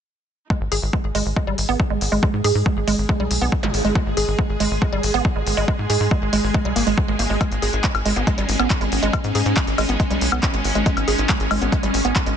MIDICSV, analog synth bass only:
0, 0, Header, 1, 2, 480
1, 0, Start_track
1, 0, Tempo, 431655
1, 557, Time_signature, 4, 2, 24, 8
1, 13753, End_track
2, 0, Start_track
2, 0, Title_t, "Analog synth bass"
2, 0, Program_c, 0, 38
2, 678, Note_on_c, 0, 32, 86
2, 764, Note_off_c, 0, 32, 0
2, 798, Note_on_c, 0, 32, 99
2, 884, Note_off_c, 0, 32, 0
2, 918, Note_on_c, 0, 32, 91
2, 1004, Note_off_c, 0, 32, 0
2, 1157, Note_on_c, 0, 32, 89
2, 1244, Note_off_c, 0, 32, 0
2, 1277, Note_on_c, 0, 32, 100
2, 1364, Note_off_c, 0, 32, 0
2, 1398, Note_on_c, 0, 32, 84
2, 1484, Note_off_c, 0, 32, 0
2, 1638, Note_on_c, 0, 32, 87
2, 1724, Note_off_c, 0, 32, 0
2, 1758, Note_on_c, 0, 32, 101
2, 1844, Note_off_c, 0, 32, 0
2, 1878, Note_on_c, 0, 32, 88
2, 1964, Note_off_c, 0, 32, 0
2, 2118, Note_on_c, 0, 32, 85
2, 2204, Note_off_c, 0, 32, 0
2, 2238, Note_on_c, 0, 32, 97
2, 2324, Note_off_c, 0, 32, 0
2, 2358, Note_on_c, 0, 32, 89
2, 2444, Note_off_c, 0, 32, 0
2, 2598, Note_on_c, 0, 44, 87
2, 2684, Note_off_c, 0, 44, 0
2, 2717, Note_on_c, 0, 44, 99
2, 2803, Note_off_c, 0, 44, 0
2, 2837, Note_on_c, 0, 44, 93
2, 2924, Note_off_c, 0, 44, 0
2, 3077, Note_on_c, 0, 32, 88
2, 3164, Note_off_c, 0, 32, 0
2, 3197, Note_on_c, 0, 32, 99
2, 3284, Note_off_c, 0, 32, 0
2, 3317, Note_on_c, 0, 32, 85
2, 3403, Note_off_c, 0, 32, 0
2, 3558, Note_on_c, 0, 35, 84
2, 3644, Note_off_c, 0, 35, 0
2, 3677, Note_on_c, 0, 35, 100
2, 3763, Note_off_c, 0, 35, 0
2, 3797, Note_on_c, 0, 35, 92
2, 3883, Note_off_c, 0, 35, 0
2, 4037, Note_on_c, 0, 32, 85
2, 4124, Note_off_c, 0, 32, 0
2, 4157, Note_on_c, 0, 32, 100
2, 4244, Note_off_c, 0, 32, 0
2, 4277, Note_on_c, 0, 32, 85
2, 4363, Note_off_c, 0, 32, 0
2, 4517, Note_on_c, 0, 32, 87
2, 4603, Note_off_c, 0, 32, 0
2, 4637, Note_on_c, 0, 32, 101
2, 4724, Note_off_c, 0, 32, 0
2, 4757, Note_on_c, 0, 32, 92
2, 4844, Note_off_c, 0, 32, 0
2, 4997, Note_on_c, 0, 32, 89
2, 5084, Note_off_c, 0, 32, 0
2, 5117, Note_on_c, 0, 32, 98
2, 5203, Note_off_c, 0, 32, 0
2, 5238, Note_on_c, 0, 32, 87
2, 5324, Note_off_c, 0, 32, 0
2, 5477, Note_on_c, 0, 32, 82
2, 5563, Note_off_c, 0, 32, 0
2, 5597, Note_on_c, 0, 32, 103
2, 5684, Note_off_c, 0, 32, 0
2, 5717, Note_on_c, 0, 32, 90
2, 5803, Note_off_c, 0, 32, 0
2, 5958, Note_on_c, 0, 32, 84
2, 6044, Note_off_c, 0, 32, 0
2, 6078, Note_on_c, 0, 32, 101
2, 6164, Note_off_c, 0, 32, 0
2, 6197, Note_on_c, 0, 32, 90
2, 6283, Note_off_c, 0, 32, 0
2, 6437, Note_on_c, 0, 44, 86
2, 6524, Note_off_c, 0, 44, 0
2, 6557, Note_on_c, 0, 44, 102
2, 6643, Note_off_c, 0, 44, 0
2, 6677, Note_on_c, 0, 44, 89
2, 6763, Note_off_c, 0, 44, 0
2, 6918, Note_on_c, 0, 32, 88
2, 7004, Note_off_c, 0, 32, 0
2, 7037, Note_on_c, 0, 32, 102
2, 7123, Note_off_c, 0, 32, 0
2, 7157, Note_on_c, 0, 32, 91
2, 7244, Note_off_c, 0, 32, 0
2, 7397, Note_on_c, 0, 35, 86
2, 7484, Note_off_c, 0, 35, 0
2, 7517, Note_on_c, 0, 32, 100
2, 7604, Note_off_c, 0, 32, 0
2, 7638, Note_on_c, 0, 32, 92
2, 7724, Note_off_c, 0, 32, 0
2, 7877, Note_on_c, 0, 32, 89
2, 7963, Note_off_c, 0, 32, 0
2, 7997, Note_on_c, 0, 32, 101
2, 8083, Note_off_c, 0, 32, 0
2, 8117, Note_on_c, 0, 32, 87
2, 8204, Note_off_c, 0, 32, 0
2, 8357, Note_on_c, 0, 32, 87
2, 8444, Note_off_c, 0, 32, 0
2, 8477, Note_on_c, 0, 32, 97
2, 8564, Note_off_c, 0, 32, 0
2, 8597, Note_on_c, 0, 32, 89
2, 8683, Note_off_c, 0, 32, 0
2, 8837, Note_on_c, 0, 32, 87
2, 8923, Note_off_c, 0, 32, 0
2, 8957, Note_on_c, 0, 32, 99
2, 9043, Note_off_c, 0, 32, 0
2, 9077, Note_on_c, 0, 32, 91
2, 9163, Note_off_c, 0, 32, 0
2, 9317, Note_on_c, 0, 32, 84
2, 9403, Note_off_c, 0, 32, 0
2, 9437, Note_on_c, 0, 32, 102
2, 9523, Note_off_c, 0, 32, 0
2, 9557, Note_on_c, 0, 32, 91
2, 9643, Note_off_c, 0, 32, 0
2, 9797, Note_on_c, 0, 32, 84
2, 9884, Note_off_c, 0, 32, 0
2, 9917, Note_on_c, 0, 32, 101
2, 10004, Note_off_c, 0, 32, 0
2, 10038, Note_on_c, 0, 32, 90
2, 10124, Note_off_c, 0, 32, 0
2, 10277, Note_on_c, 0, 44, 88
2, 10363, Note_off_c, 0, 44, 0
2, 10398, Note_on_c, 0, 44, 100
2, 10484, Note_off_c, 0, 44, 0
2, 10517, Note_on_c, 0, 44, 91
2, 10603, Note_off_c, 0, 44, 0
2, 10757, Note_on_c, 0, 32, 88
2, 10844, Note_off_c, 0, 32, 0
2, 10877, Note_on_c, 0, 32, 102
2, 10964, Note_off_c, 0, 32, 0
2, 10997, Note_on_c, 0, 32, 89
2, 11084, Note_off_c, 0, 32, 0
2, 11237, Note_on_c, 0, 35, 88
2, 11323, Note_off_c, 0, 35, 0
2, 11358, Note_on_c, 0, 35, 96
2, 11444, Note_off_c, 0, 35, 0
2, 11478, Note_on_c, 0, 35, 92
2, 11564, Note_off_c, 0, 35, 0
2, 11717, Note_on_c, 0, 32, 84
2, 11803, Note_off_c, 0, 32, 0
2, 11837, Note_on_c, 0, 32, 100
2, 11923, Note_off_c, 0, 32, 0
2, 11957, Note_on_c, 0, 32, 85
2, 12043, Note_off_c, 0, 32, 0
2, 12197, Note_on_c, 0, 32, 85
2, 12283, Note_off_c, 0, 32, 0
2, 12317, Note_on_c, 0, 32, 101
2, 12403, Note_off_c, 0, 32, 0
2, 12437, Note_on_c, 0, 32, 92
2, 12523, Note_off_c, 0, 32, 0
2, 12677, Note_on_c, 0, 32, 88
2, 12764, Note_off_c, 0, 32, 0
2, 12798, Note_on_c, 0, 32, 100
2, 12884, Note_off_c, 0, 32, 0
2, 12918, Note_on_c, 0, 32, 86
2, 13004, Note_off_c, 0, 32, 0
2, 13158, Note_on_c, 0, 32, 86
2, 13244, Note_off_c, 0, 32, 0
2, 13277, Note_on_c, 0, 32, 100
2, 13364, Note_off_c, 0, 32, 0
2, 13398, Note_on_c, 0, 32, 94
2, 13484, Note_off_c, 0, 32, 0
2, 13637, Note_on_c, 0, 32, 85
2, 13724, Note_off_c, 0, 32, 0
2, 13753, End_track
0, 0, End_of_file